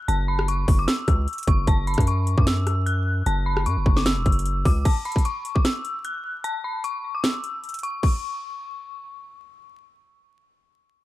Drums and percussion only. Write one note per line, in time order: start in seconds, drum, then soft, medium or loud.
0.08 closed hi-hat medium
0.39 cross-stick medium
0.48 closed hi-hat medium
0.68 kick loud
0.68 open hi-hat medium
0.88 snare loud
0.88 closed hi-hat medium
1.08 kick loud
1.08 cross-stick medium
1.08 closed hi-hat medium
1.28 closed hi-hat soft
1.33 closed hi-hat medium
1.38 closed hi-hat medium
1.43 closed hi-hat medium
1.48 kick loud
1.48 closed hi-hat medium
1.67 kick loud
1.67 closed hi-hat medium
1.87 closed hi-hat soft
1.94 kick medium
1.94 cross-stick medium
1.94 closed hi-hat medium
2.00 closed hi-hat medium
2.07 closed hi-hat medium
2.27 closed hi-hat medium
2.38 kick loud
2.47 snare loud
2.47 closed hi-hat medium
2.67 cross-stick medium
2.67 closed hi-hat medium
2.87 closed hi-hat medium
3.26 closed hi-hat medium
3.57 cross-stick medium
3.66 closed hi-hat medium
3.86 kick loud
3.97 snare medium
4.06 snare loud
4.06 closed hi-hat medium
4.26 kick loud
4.26 closed hi-hat soft
4.32 closed hi-hat medium
4.39 closed hi-hat medium
4.46 closed hi-hat medium
4.65 kick loud
4.65 open hi-hat medium
4.85 kick loud
4.85 closed hi-hat medium
4.85 crash medium
5.05 closed hi-hat soft
5.12 kick medium
5.12 closed hi-hat medium
5.18 closed hi-hat medium
5.25 closed hi-hat medium
5.45 closed hi-hat medium
5.56 kick medium
5.65 snare loud
5.65 closed hi-hat medium
5.85 closed hi-hat medium
6.05 closed hi-hat medium
6.44 closed hi-hat medium
6.84 closed hi-hat medium
7.24 snare loud
7.24 closed hi-hat medium
7.44 closed hi-hat medium
7.64 closed hi-hat soft
7.69 closed hi-hat medium
7.74 closed hi-hat medium
7.79 closed hi-hat medium
7.83 closed hi-hat medium
8.03 kick loud
8.03 crash medium